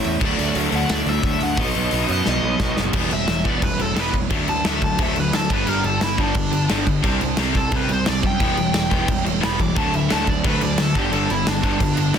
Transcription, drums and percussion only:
0.04 open hi-hat medium
0.21 kick loud
0.21 crash loud
0.39 open hi-hat medium
0.55 open hi-hat medium
0.72 open hi-hat medium
0.90 snare loud
0.90 open hi-hat medium
1.07 open hi-hat medium
1.23 kick medium
1.23 open hi-hat medium
1.41 open hi-hat medium
1.57 kick loud
1.57 open hi-hat medium
1.75 open hi-hat medium
1.91 open hi-hat medium
2.08 open hi-hat medium
2.26 snare medium
2.60 kick loud
2.60 snare medium
2.77 snare medium
2.93 kick loud
2.93 crash loud
2.93 crash medium
3.11 crash medium
3.27 snare loud
3.27 crash medium
3.45 kick medium
3.45 crash medium
3.62 kick loud
3.62 crash medium
3.79 crash medium
3.96 snare loud
3.96 crash medium
4.14 kick medium
4.14 crash medium
4.30 kick loud
4.30 crash medium
4.48 crash medium
4.65 snare loud
4.65 crash medium
4.82 kick medium
4.82 crash medium
4.98 kick loud
4.98 crash medium
5.16 crash medium
5.33 snare loud
5.33 crash medium
5.50 kick loud
5.50 crash medium
5.67 crash medium
5.84 crash medium
6.01 snare loud
6.01 crash medium
6.18 kick medium
6.18 crash medium
6.34 kick loud
6.34 crash medium
6.52 crash medium
6.69 snare loud
6.69 crash medium
6.87 kick medium
6.87 crash medium
7.04 kick loud
7.04 crash medium
7.21 crash medium
7.37 snare loud
7.37 crash medium
7.55 kick medium
7.55 crash medium
7.72 kick loud
7.72 crash medium
7.89 crash medium
8.06 snare loud
8.06 crash loud
8.23 kick medium
8.23 crash medium
8.40 kick loud
8.40 crash medium
8.57 crash medium
8.74 snare loud
8.74 crash medium
8.91 kick medium
8.91 crash medium
9.08 kick loud
9.08 crash medium
9.26 crash medium
9.43 snare loud
9.43 crash medium
9.60 kick medium
9.60 crash medium
9.76 kick loud
9.76 crash medium
9.94 crash medium
10.10 snare loud
10.10 crash medium
10.27 kick medium
10.27 crash medium
10.44 kick loud
10.44 crash loud
10.61 crash medium
10.78 snare loud
10.78 crash loud
10.95 kick medium
10.95 crash medium
11.12 crash medium
11.30 crash medium
11.47 snare loud
11.47 crash medium
11.63 kick medium
11.63 crash medium
11.80 kick loud
11.80 crash medium
11.97 crash medium
12.14 snare loud
12.14 crash medium

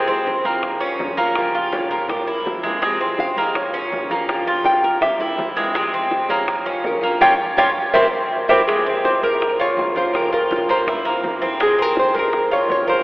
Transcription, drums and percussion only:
0.08 high bongo soft
0.08 high conga soft
0.27 high bongo medium
0.27 high conga medium
0.45 high bongo soft
0.45 high conga soft
0.63 high bongo medium
0.63 high conga soft
0.81 high conga soft
0.99 high bongo soft
0.99 low bongo medium
0.99 high conga medium
1.18 high bongo soft
1.18 high conga medium
1.35 high bongo medium
1.35 high conga soft
1.54 high bongo soft
1.54 high conga soft
1.73 high bongo medium
1.73 high conga medium
1.90 high bongo soft
1.90 high conga soft
2.09 high bongo medium
2.09 high conga soft
2.09 low conga medium
2.27 high conga soft
2.45 high bongo soft
2.45 low bongo medium
2.45 high conga medium
2.64 high bongo soft
2.64 high conga medium
2.82 high bongo medium
2.82 high conga soft
3.00 high bongo soft
3.00 high conga soft
3.18 high bongo medium
3.18 high conga medium
3.37 high bongo soft
3.37 high conga soft
3.55 high bongo medium
3.55 high conga soft
3.73 high conga soft
3.92 high bongo soft
3.92 low bongo medium
3.92 high conga medium
4.10 high bongo soft
4.10 high conga medium
4.29 high bongo medium
4.29 high conga soft
4.47 high bongo soft
4.47 high conga soft
4.64 high bongo medium
4.64 high conga medium
4.83 high bongo soft
4.83 high conga soft
5.01 high bongo medium
5.01 high conga soft
5.01 low conga medium
5.20 high conga soft
5.20 low conga medium
5.38 high bongo soft
5.38 low bongo medium
5.38 high conga medium
5.56 high bongo soft
5.56 high conga medium
5.75 high bongo medium
5.75 high conga soft
5.93 high bongo soft
5.93 high conga soft
6.11 high bongo medium
6.11 high conga medium
6.29 high bongo soft
6.29 high conga soft
6.48 high bongo medium
6.48 high conga soft
6.66 high conga soft
6.84 high bongo soft
6.84 low bongo medium
6.84 high conga medium
7.01 high bongo soft
7.01 high conga medium
7.21 low bongo loud
7.21 high conga loud
7.58 low bongo medium
7.58 high conga medium
7.94 low bongo loud
7.94 high conga loud
8.49 low bongo loud
8.49 high conga medium
8.68 high bongo medium
8.68 high conga soft
8.87 high bongo soft
8.87 high conga soft
9.05 high bongo medium
9.05 high conga medium
9.23 high bongo soft
9.23 high conga soft
9.40 high bongo medium
9.40 high conga soft
9.59 high conga soft
9.77 high bongo soft
9.77 low bongo medium
9.77 high conga medium
9.95 high bongo soft
9.95 high conga medium
10.14 high bongo medium
10.14 high conga soft
10.33 high bongo soft
10.33 high conga soft
10.51 high bongo medium
10.51 high conga medium
10.69 high bongo soft
10.69 high conga soft
10.87 high bongo medium
10.87 high conga soft
10.87 low conga medium
11.06 high conga soft
11.24 high bongo soft
11.24 low bongo medium
11.24 high conga medium
11.42 high bongo soft
11.42 high conga medium
11.60 high bongo medium
11.60 high conga soft
11.79 high bongo soft
11.79 high conga soft
11.97 high bongo medium
11.97 high conga medium
12.16 high bongo soft
12.16 high conga soft
12.33 high bongo medium
12.33 high conga soft
12.51 high conga soft
12.68 high bongo soft
12.68 low bongo medium
12.68 high conga medium
12.87 high bongo soft
12.87 high conga medium

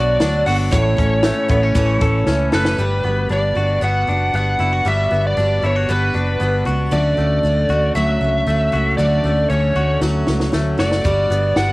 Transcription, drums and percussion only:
0.20 snare loud
0.20 closed hi-hat medium
0.47 open hi-hat medium
0.73 kick loud
0.73 closed hi-hat loud
0.98 kick loud
0.98 closed hi-hat medium
1.23 snare loud
1.23 closed hi-hat loud
1.49 kick loud
1.49 closed hi-hat medium
1.75 kick loud
1.75 closed hi-hat medium
2.01 kick medium
2.01 closed hi-hat medium
2.27 snare medium
2.52 snare medium
2.65 snare loud
10.01 snare medium
10.27 snare medium
10.40 snare medium
10.53 snare medium
10.79 snare medium
10.92 snare medium
11.05 kick loud
11.05 closed hi-hat medium
11.32 closed hi-hat medium
11.56 snare loud
11.56 closed hi-hat medium

